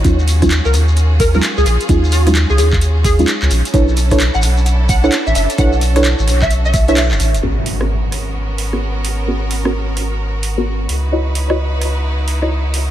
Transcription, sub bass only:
X:1
M:4/4
L:1/16
Q:"Swing 16ths" 1/4=130
K:G#m
V:1 name="Sub bass" clef=bass
D,,4- D,, C,, D,,6 z C,, A,,, z | D,,4- D,, C,, D,,6 z C,, A,,, z | B,,,4- B,,, =A,,, B,,,6 z A,,, F,,, z | B,,,4- B,,, =A,,, B,,,6- B,,, F,,, A,,, F,,, |
G,,,16- | G,,,12- G,,,2 C,,2- | C,,16 |]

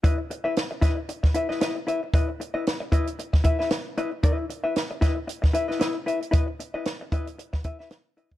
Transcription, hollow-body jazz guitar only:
X:1
M:4/4
L:1/16
Q:"Swing 16ths" 1/4=114
K:Bmix
V:1 name="Hollow-body jazz guitar"
[EBd] z2 [EBe] z2 [EBd] z3 [EBe] [EBd] [EBd] z [EBe] z | [EBd] z2 [EBd] z2 [EBd] z3 [EBe] [EBe] z2 [EBd] z | [EBd]2 z [EBe] z2 [EBd] z3 [EBe] [EBd] [EBd] z [EBe] z | [EBd] z2 [EBd] z2 [EBd] z3 [EBe] [EBe] z2 [EBd] z |]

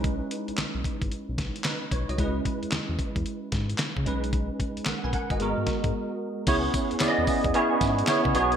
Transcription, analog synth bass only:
X:1
M:4/4
L:1/16
Q:"Swing 16ths" 1/4=112
K:C#dor
V:1 name="Analog synth bass" clef=bass
B,,,2 z B,,, B,,, B,,, z G,,, B,,, B,,,2 z3 B,,, ^B,,, | C,,2 z E,, E,, E,, z E,, z2 G,,2 z C, B,,,2- | B,,,2 z B,,, B,,, B,,, z G,,, G,,, G,, z G,, z4 | C,,2 z E,, E,, E,, z E,, z2 G,,2 z C, B,,,2 |]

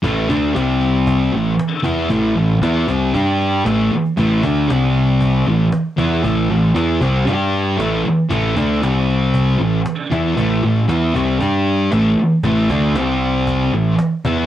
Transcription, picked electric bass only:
X:1
M:4/4
L:1/8
Q:1/4=116
K:Am
V:1 name="Picked electric bass" clef=bass
A,,, D,, C,,3 A,,, z E,, | A,,, A,,, E,, C,, G,,2 A,,, z | A,,, D,, C,,3 A,,, z E,, | A,,, A,,, E,, C,, G,,2 A,,, z |
A,,, D,, C,,3 A,,, z E,, | A,,, A,,, E,, C,, G,,2 A,,, z | A,,, D,, C,,3 A,,, z E,, |]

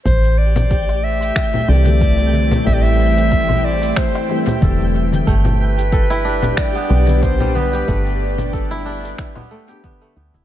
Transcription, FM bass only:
X:1
M:4/4
L:1/16
Q:"Swing 16ths" 1/4=92
K:Am
V:1 name="FM bass" clef=bass
A,,,8 z2 C,,6 | A,,,8 z4 E,,,4 | G,,,8 z2 B,,,6 | G,,,8 z6 D,, D,,, |]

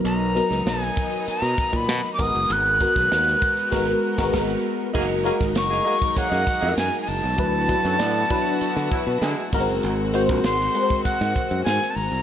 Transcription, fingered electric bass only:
X:1
M:4/4
L:1/16
Q:1/4=98
K:F#
V:1 name="Fingered electric bass" clef=bass
B,,,3 C,, B,,,2 z3 B,, z A,, B,, z G,,, F,,, | G,,,3 B,,, D,,2 z2 G,,,2 z G,,, G,,,2 z2 | F,,,3 G,,, F,,,2 z3 F,, z E,, F,, z F,,, B,,, | =D,,3 F,, =A,,2 z3 =D, z B,, D, z G,,, F,,, |
G,,,3 A,,, G,,,2 z3 G,, z F,, G,, z G,,, ^B,,, |]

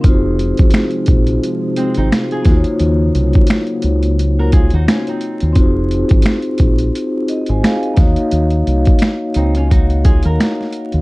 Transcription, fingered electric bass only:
X:1
M:4/4
L:1/16
Q:"Swing 16ths" 1/4=87
K:Ebdor
V:1 name="Fingered electric bass" clef=bass
F,,,3 A,,, z2 B,,,2 z3 A,,, z2 E,, z | E,,2 C,, z3 D,,4- D,, E,, z3 E,, | F,,,3 A,,, z2 B,,,2 z3 A,,, z2 E,, z | E,,2 C,, z3 D,,4- D,, E,, z3 E,, |]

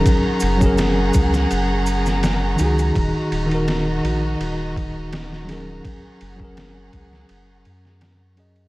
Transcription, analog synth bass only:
X:1
M:4/4
L:1/8
Q:1/4=83
K:Gb
V:1 name="Analog synth bass" clef=bass
z G,,,2 D,, G,,,3 D,, | E,,, E,,,2 B,,, E,,,4 | z G,,,2 D,, G,,, G,,3 |]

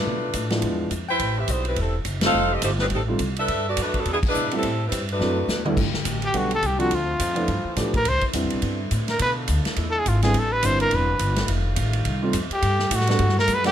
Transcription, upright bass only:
X:1
M:4/4
L:1/8
Q:"Swing" 1/4=210
K:G
V:1 name="Upright bass" clef=bass
B,,2 A,,2 E,,2 =F,,2 | A,,,2 B,,,2 E,,,2 F,,,2 | =F,,,2 G,,,2 A,,,2 C,,2 | G,,2 F,,2 E,,2 B,,2 |
A,,2 G,,2 F,,2 E,,2 | G,,, z A,,,2 B,,,2 C,,2 | D,,2 =F,,2 G,, z A,,2 | C,, z (3E,, C,, B,,, G,,2 A,,2 |
B,,2 D,, z E,,2 ^G,,,2 | A,,,2 G,,,2 E,,,2 G,,,2 | =F,,,2 A,,,2 C,,2 =F,, z | G,,2 A,,2 G,,2 F,,2 |]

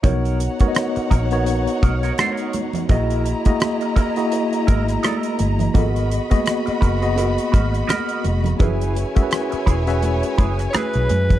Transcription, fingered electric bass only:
X:1
M:4/4
L:1/16
Q:"Swing 16ths" 1/4=84
K:B
V:1 name="Fingered electric bass" clef=bass
B,,,3 z3 A,,,4 B,,,2 z4 | A,,,3 z6 z G,,,2 z2 =G,,,2 | G,,,3 z3 F,,,4 G,,,2 z2 ^E,,,2 | F,,,3 z3 E,,,4 F,,,2 z B,,, F,,2 |]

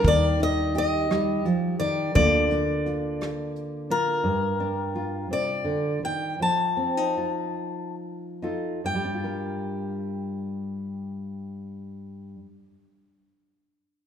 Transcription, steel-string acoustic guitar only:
X:1
M:6/8
L:1/8
Q:3/8=54
K:Gm
V:1 name="Steel-string acoustic guitar"
d e e2 z d | d4 z B- | B3 d2 g | a4 z2 |
g6- | g6 |]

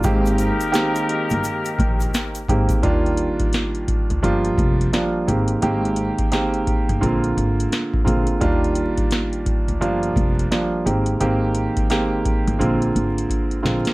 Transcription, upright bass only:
X:1
M:4/4
L:1/16
Q:"Swing 16ths" 1/4=86
K:Eb
V:1 name="Upright bass" clef=bass
A,,,3 z4 G,,, z2 B,,,2 z2 A,,, z | E,,3 z4 D,, G,,,2 F,,,2 z2 A,,,2 | A,,,3 z4 G,,, B,,,2 A,,,2 z2 B,,, z | E,,3 z4 D,, G,,,2 F,,,2 z2 A,,,2 |
A,,,3 z4 G,,, B,,,2 A,,,2 z2 B,,, z |]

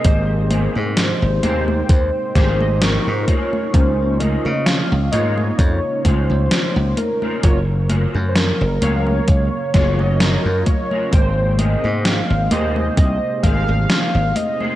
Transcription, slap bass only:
X:1
M:4/4
L:1/16
Q:"Swing 16ths" 1/4=65
K:Ab
V:1 name="Slap bass" clef=bass
A,,,3 A,,2 A,,, E,,2 E,, z A,,,3 A,, z2 | D,,3 D,2 D,, A,,2 F,, z D,, D,, z D,, z2 | _G,,,3 _G,,2 G,,, D,,2 D,, z G,,,3 G,, z2 | A,,,3 A,,2 A,,, E,,2 C,, z A,,, A,,, z A,,, z2 |]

